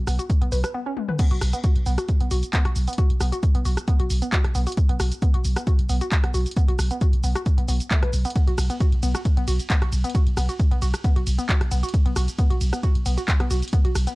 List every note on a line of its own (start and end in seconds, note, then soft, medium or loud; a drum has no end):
0.07 0.19 B1 loud
0.07 0.12 B3 medium
0.07 cross-stick medium
0.07 open hi-hat medium
0.07 shaker medium
0.19 0.23 F#4 medium
0.19 closed hi-hat medium
0.19 shaker soft
0.30 kick loud
0.30 closed hi-hat medium
0.30 shaker soft
0.41 0.51 B1 medium
0.41 0.46 B3 medium
0.41 closed hi-hat medium
0.52 0.64 B1 loud
0.52 0.57 B4 medium
0.52 open hi-hat loud
0.52 shaker medium
0.64 0.68 B4 medium
0.64 cross-stick medium
0.64 closed hi-hat medium
0.64 shaker soft
0.74 0.79 B3 medium
0.86 0.91 C#4 medium
0.97 high tom medium
1.09 1.13 B4 medium
1.09 mid tom medium
1.19 1.24 B3 medium
1.19 kick loud
1.19 closed hi-hat medium
1.19 crash loud
1.19 shaker soft
1.31 1.41 B1 medium
1.31 1.35 F#4 medium
1.31 closed hi-hat medium
1.41 1.53 B1 loud
1.41 cross-stick medium
1.41 open hi-hat loud
1.41 shaker medium
1.53 1.58 B3 medium
1.53 closed hi-hat medium
1.53 shaker soft
1.64 1.69 F#4 medium
1.64 kick loud
1.64 closed hi-hat medium
1.64 shaker soft
1.76 1.86 B1 medium
1.76 closed hi-hat medium
1.86 1.98 B1 loud
1.86 1.91 B3 medium
1.86 open hi-hat medium
1.86 shaker medium
1.98 2.03 F#4 medium
1.98 cross-stick medium
1.98 closed hi-hat medium
1.98 shaker soft
2.09 kick loud
2.09 closed hi-hat medium
2.09 shaker soft
2.20 2.30 B1 medium
2.20 2.25 B3 medium
2.20 closed hi-hat medium
2.31 2.43 B1 loud
2.31 2.36 F#4 medium
2.31 open hi-hat loud
2.31 shaker medium
2.43 closed hi-hat medium
2.43 shaker soft
2.53 2.58 B3 medium
2.53 kick loud
2.53 clap loud
2.53 closed hi-hat medium
2.53 shaker soft
2.65 2.75 B1 medium
2.65 2.70 F#4 medium
2.65 cross-stick medium
2.65 closed hi-hat medium
2.76 2.87 B1 loud
2.76 open hi-hat medium
2.76 shaker medium
2.88 2.92 B3 medium
2.88 closed hi-hat medium
2.88 shaker soft
2.93 closed hi-hat medium
2.98 3.03 F#4 medium
2.98 kick loud
2.98 closed hi-hat medium
2.98 shaker soft
3.10 3.20 B1 medium
3.10 closed hi-hat medium
3.20 3.32 B1 loud
3.20 3.26 B3 medium
3.20 cross-stick medium
3.20 open hi-hat loud
3.20 shaker medium
3.32 3.37 F#4 medium
3.32 closed hi-hat medium
3.32 shaker soft
3.43 kick loud
3.43 closed hi-hat medium
3.43 shaker soft
3.55 3.65 B1 medium
3.55 3.59 B3 medium
3.55 closed hi-hat medium
3.65 3.77 B1 loud
3.65 3.70 F#4 medium
3.65 open hi-hat medium
3.65 shaker medium
3.77 cross-stick medium
3.77 closed hi-hat medium
3.77 shaker soft
3.88 3.93 B3 medium
3.88 kick loud
3.88 closed hi-hat medium
3.88 shaker soft
4.00 4.10 B1 medium
4.00 4.04 F#4 medium
4.00 closed hi-hat medium
4.10 4.22 B1 loud
4.10 open hi-hat loud
4.10 shaker medium
4.22 4.26 B3 medium
4.22 closed hi-hat medium
4.22 shaker soft
4.33 4.37 F#4 medium
4.33 kick loud
4.33 clap loud
4.33 closed hi-hat medium
4.33 shaker soft
4.44 4.54 B1 medium
4.44 cross-stick medium
4.44 closed hi-hat medium
4.55 4.67 B1 loud
4.55 4.60 B3 medium
4.55 open hi-hat loud
4.55 shaker medium
4.67 4.71 F#4 medium
4.67 closed hi-hat medium
4.67 shaker soft
4.72 closed hi-hat medium
4.77 kick loud
4.77 closed hi-hat medium
4.77 shaker soft
4.89 4.99 B1 medium
4.89 4.94 B3 medium
4.89 closed hi-hat medium
5.00 5.11 B1 medium
5.00 5.05 F#4 medium
5.00 cross-stick loud
5.00 open hi-hat loud
5.00 shaker medium
5.12 closed hi-hat medium
5.12 shaker soft
5.22 5.27 B3 medium
5.22 kick loud
5.22 closed hi-hat medium
5.22 shaker soft
5.34 5.44 B1 medium
5.34 5.38 F#4 medium
5.34 closed hi-hat medium
5.45 5.56 B1 loud
5.45 open hi-hat loud
5.45 shaker medium
5.56 5.61 B3 medium
5.56 cross-stick loud
5.56 closed hi-hat medium
5.56 shaker soft
5.67 5.72 F#4 medium
5.67 kick loud
5.67 closed hi-hat medium
5.67 shaker soft
5.79 5.89 B1 medium
5.79 closed hi-hat medium
5.89 6.01 B1 loud
5.89 5.94 B3 medium
5.89 open hi-hat loud
5.89 shaker medium
6.01 6.06 F#4 medium
6.01 closed hi-hat medium
6.01 shaker soft
6.12 kick loud
6.12 clap loud
6.12 closed hi-hat medium
6.12 shaker soft
6.24 6.34 B1 medium
6.24 6.28 B3 medium
6.24 cross-stick medium
6.24 closed hi-hat medium
6.34 6.46 B1 loud
6.34 6.39 F#4 medium
6.34 open hi-hat medium
6.34 shaker medium
6.46 closed hi-hat medium
6.46 shaker soft
6.51 closed hi-hat medium
6.57 6.61 B3 medium
6.57 kick loud
6.57 closed hi-hat medium
6.57 shaker soft
6.68 6.78 B1 medium
6.68 6.73 F#4 medium
6.68 closed hi-hat medium
6.79 6.90 B1 loud
6.79 cross-stick loud
6.79 open hi-hat loud
6.79 shaker medium
6.91 6.95 B3 medium
6.91 closed hi-hat medium
6.91 shaker soft
7.01 7.06 F#4 medium
7.01 kick loud
7.01 closed hi-hat medium
7.01 shaker soft
7.13 7.23 B1 medium
7.13 closed hi-hat medium
7.24 7.35 B1 loud
7.24 7.29 B3 medium
7.24 open hi-hat medium
7.24 shaker medium
7.36 7.40 F#4 medium
7.36 cross-stick loud
7.36 closed hi-hat medium
7.36 shaker soft
7.46 kick loud
7.46 closed hi-hat medium
7.46 shaker soft
7.58 7.68 B1 medium
7.58 7.62 B3 medium
7.58 closed hi-hat medium
7.68 7.80 B1 loud
7.68 7.71 B3 medium
7.68 open hi-hat loud
7.68 shaker medium
7.80 closed hi-hat medium
7.80 shaker soft
7.91 7.98 A3 medium
7.91 kick loud
7.91 clap loud
7.91 closed hi-hat medium
7.91 shaker soft
8.03 8.13 B1 medium
8.03 8.09 B4 medium
8.03 cross-stick medium
8.03 closed hi-hat medium
8.13 8.25 B1 loud
8.13 open hi-hat medium
8.13 shaker medium
8.25 8.29 B3 medium
8.25 closed hi-hat soft
8.25 shaker soft
8.30 closed hi-hat medium
8.36 8.40 B3 medium
8.36 kick loud
8.36 closed hi-hat medium
8.36 ride medium
8.36 shaker soft
8.47 8.57 B1 medium
8.47 8.52 F#4 medium
8.47 closed hi-hat medium
8.58 8.70 B1 loud
8.58 cross-stick loud
8.58 open hi-hat loud
8.58 ride medium
8.58 shaker medium
8.70 8.74 B3 medium
8.70 closed hi-hat medium
8.70 shaker soft
8.80 8.85 F#4 medium
8.80 kick loud
8.80 closed hi-hat medium
8.80 ride medium
8.80 shaker soft
8.92 9.02 B1 medium
8.92 closed hi-hat medium
9.03 9.14 B1 loud
9.03 9.08 B3 medium
9.03 open hi-hat medium
9.03 ride medium
9.03 shaker medium
9.15 9.19 F#4 medium
9.15 cross-stick loud
9.15 closed hi-hat medium
9.15 shaker soft
9.25 kick loud
9.25 closed hi-hat medium
9.25 ride medium
9.25 shaker soft
9.37 9.47 B1 medium
9.37 9.41 B3 medium
9.37 closed hi-hat medium
9.48 9.59 B1 medium
9.48 9.52 F#4 medium
9.48 open hi-hat loud
9.48 ride medium
9.48 shaker medium
9.59 closed hi-hat soft
9.59 shaker soft
9.70 9.75 B3 medium
9.70 kick loud
9.70 clap loud
9.70 closed hi-hat medium
9.70 ride medium
9.70 shaker soft
9.82 9.92 B1 medium
9.82 9.86 F#4 medium
9.82 cross-stick medium
9.82 closed hi-hat soft
9.92 10.04 B1 loud
9.92 open hi-hat medium
9.92 ride medium
9.92 shaker medium
10.04 10.08 B3 medium
10.04 closed hi-hat soft
10.04 shaker soft
10.10 closed hi-hat medium
10.15 10.20 F#4 medium
10.15 kick loud
10.15 closed hi-hat medium
10.15 ride medium
10.15 shaker soft
10.27 10.37 B1 medium
10.27 closed hi-hat medium
10.37 10.49 B1 loud
10.37 10.42 B3 medium
10.37 cross-stick medium
10.37 open hi-hat loud
10.37 ride medium
10.37 shaker medium
10.49 10.53 F#4 medium
10.49 closed hi-hat medium
10.49 shaker soft
10.60 kick loud
10.60 closed hi-hat medium
10.60 ride medium
10.60 shaker soft
10.71 10.81 B1 medium
10.71 10.76 B3 medium
10.71 closed hi-hat medium
10.82 10.94 B1 loud
10.82 10.87 F#4 medium
10.82 open hi-hat medium
10.82 ride medium
10.82 shaker medium
10.94 cross-stick loud
10.94 closed hi-hat medium
10.94 shaker soft
11.04 11.09 B3 medium
11.04 kick loud
11.04 closed hi-hat medium
11.04 ride medium
11.04 shaker soft
11.16 11.26 B1 medium
11.16 11.20 F#4 medium
11.16 closed hi-hat medium
11.27 11.38 B1 loud
11.27 open hi-hat loud
11.27 ride medium
11.27 shaker medium
11.38 11.43 B3 medium
11.38 closed hi-hat medium
11.38 shaker soft
11.49 11.54 F#4 medium
11.49 kick loud
11.49 clap loud
11.49 closed hi-hat medium
11.49 ride medium
11.49 shaker soft
11.61 11.71 B1 medium
11.61 cross-stick medium
11.61 closed hi-hat medium
11.71 11.83 B1 loud
11.71 11.76 B3 medium
11.71 open hi-hat medium
11.71 ride medium
11.71 shaker medium
11.83 11.88 F#4 medium
11.83 closed hi-hat soft
11.83 shaker soft
11.89 closed hi-hat medium
11.94 kick loud
11.94 closed hi-hat medium
11.94 ride medium
11.94 shaker soft
12.06 12.16 B1 medium
12.06 12.10 B3 medium
12.06 closed hi-hat medium
12.16 12.28 B1 loud
12.16 12.21 F#4 medium
12.16 cross-stick medium
12.16 open hi-hat loud
12.16 ride medium
12.16 shaker medium
12.28 closed hi-hat medium
12.28 shaker soft
12.38 12.43 B3 medium
12.38 kick loud
12.38 closed hi-hat medium
12.38 ride medium
12.38 shaker soft
12.50 12.60 B1 medium
12.50 12.55 F#4 medium
12.50 closed hi-hat medium
12.61 12.73 B1 loud
12.61 open hi-hat medium
12.61 ride medium
12.61 shaker medium
12.73 12.77 B3 medium
12.73 cross-stick medium
12.73 closed hi-hat medium
12.73 shaker soft
12.83 12.88 F#4 medium
12.83 kick loud
12.83 closed hi-hat medium
12.83 ride medium
12.83 shaker soft
12.95 13.05 B1 medium
12.95 closed hi-hat medium
13.06 13.17 B1 loud
13.06 13.11 B3 medium
13.06 open hi-hat loud
13.06 ride medium
13.06 shaker medium
13.18 13.22 F#4 medium
13.18 closed hi-hat soft
13.18 shaker soft
13.28 kick loud
13.28 clap loud
13.28 closed hi-hat medium
13.28 ride medium
13.28 shaker soft
13.40 13.50 B1 medium
13.40 13.44 B3 medium
13.40 cross-stick medium
13.40 closed hi-hat medium
13.50 13.62 B1 loud
13.50 13.55 F#4 medium
13.50 open hi-hat medium
13.50 ride medium
13.50 shaker medium
13.62 closed hi-hat soft
13.62 shaker soft
13.68 closed hi-hat medium
13.73 13.78 B3 medium
13.73 kick loud
13.73 closed hi-hat medium
13.73 ride medium
13.73 shaker soft
13.85 13.95 B1 medium
13.85 13.89 F#4 medium
13.85 closed hi-hat medium
13.95 14.07 B1 loud
13.95 cross-stick medium
13.95 open hi-hat loud
13.95 ride medium
13.95 shaker medium
14.07 14.11 B3 medium
14.07 closed hi-hat medium
14.07 shaker soft